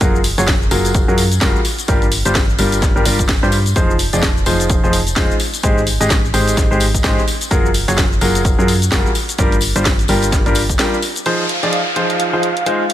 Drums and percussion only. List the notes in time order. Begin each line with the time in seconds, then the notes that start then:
0.01 kick, closed hi-hat, tambourine, cabasa
0.15 cabasa
0.24 open hi-hat, tambourine
0.38 closed hi-hat, tambourine, cabasa
0.48 kick, snare, closed hi-hat, cabasa
0.62 cabasa
0.71 open hi-hat, tambourine
0.85 closed hi-hat, tambourine, cabasa
0.94 kick, closed hi-hat, tambourine, cabasa
1.09 cabasa
1.18 open hi-hat, tambourine
1.31 closed hi-hat, tambourine, cabasa
1.41 kick, snare, closed hi-hat, cabasa
1.56 cabasa
1.65 open hi-hat, tambourine
1.79 closed hi-hat, tambourine, cabasa
1.88 kick, closed hi-hat, tambourine, cabasa
2.02 closed hi-hat, cabasa
2.12 open hi-hat, tambourine
2.25 closed hi-hat, tambourine, cabasa
2.35 kick, snare, closed hi-hat, tambourine, cabasa
2.50 cabasa
2.59 open hi-hat, tambourine
2.72 closed hi-hat, tambourine, cabasa
2.82 kick, snare, closed hi-hat, tambourine, cabasa
2.97 cabasa
3.05 open hi-hat, tambourine
3.19 kick, closed hi-hat, tambourine, cabasa
3.28 kick, snare, closed hi-hat, tambourine, cabasa
3.43 cabasa
3.52 open hi-hat, tambourine
3.66 closed hi-hat, tambourine, cabasa
3.76 kick, closed hi-hat, tambourine, cabasa
3.90 cabasa
3.99 open hi-hat, tambourine
4.13 closed hi-hat, tambourine, cabasa
4.23 kick, snare, closed hi-hat, cabasa
4.37 cabasa
4.46 open hi-hat, tambourine
4.60 closed hi-hat, tambourine, cabasa
4.70 kick, closed hi-hat, tambourine, cabasa
4.84 cabasa
4.93 open hi-hat, tambourine
5.07 closed hi-hat, tambourine, cabasa
5.16 kick, snare, closed hi-hat, cabasa
5.31 cabasa
5.40 open hi-hat, tambourine
5.54 closed hi-hat, tambourine, cabasa
5.63 kick, closed hi-hat, tambourine, cabasa
5.78 cabasa
5.87 open hi-hat, tambourine
6.01 closed hi-hat, tambourine, cabasa
6.10 kick, snare, closed hi-hat, cabasa
6.25 cabasa
6.34 open hi-hat, tambourine
6.48 closed hi-hat, tambourine, cabasa
6.57 kick, snare, closed hi-hat, tambourine, cabasa
6.72 cabasa
6.80 open hi-hat, tambourine
6.94 kick, closed hi-hat, tambourine, cabasa
7.04 kick, snare, closed hi-hat, cabasa
7.19 cabasa
7.28 open hi-hat, tambourine
7.41 closed hi-hat, tambourine, cabasa
7.51 kick, closed hi-hat, tambourine, cabasa
7.66 cabasa
7.74 open hi-hat, tambourine
7.88 closed hi-hat, tambourine, cabasa
7.98 kick, snare, closed hi-hat, cabasa
8.12 cabasa
8.21 open hi-hat, tambourine
8.35 closed hi-hat, tambourine, cabasa
8.45 kick, closed hi-hat, tambourine, cabasa
8.59 cabasa
8.68 open hi-hat, tambourine
8.82 closed hi-hat, tambourine, cabasa
8.91 kick, snare, closed hi-hat, tambourine, cabasa
9.06 cabasa
9.15 open hi-hat, tambourine
9.29 closed hi-hat, tambourine, cabasa
9.38 kick, closed hi-hat, tambourine, cabasa
9.52 closed hi-hat, cabasa
9.61 open hi-hat, tambourine
9.76 closed hi-hat, tambourine, cabasa
9.85 kick, snare, closed hi-hat, cabasa
9.99 closed hi-hat, cabasa
10.08 open hi-hat, tambourine
10.22 closed hi-hat, tambourine, cabasa
10.32 kick, snare, closed hi-hat, tambourine, cabasa
10.46 closed hi-hat, cabasa
10.55 open hi-hat, tambourine
10.69 kick, closed hi-hat, tambourine, cabasa
10.79 snare, closed hi-hat, tambourine, cabasa
10.94 cabasa
11.02 open hi-hat, tambourine
11.15 closed hi-hat, tambourine, cabasa
11.26 closed hi-hat
11.49 closed hi-hat
11.63 closed hi-hat
11.73 closed hi-hat
11.96 closed hi-hat
12.10 closed hi-hat
12.20 closed hi-hat
12.43 closed hi-hat
12.57 closed hi-hat
12.66 closed hi-hat
12.90 closed hi-hat